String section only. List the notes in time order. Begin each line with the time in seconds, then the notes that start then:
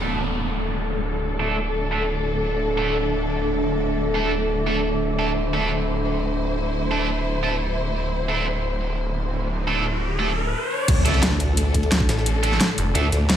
Already playing: A2 D3 D4 A4
5.37 E4 C5
10.88 A2 D3 D4 A4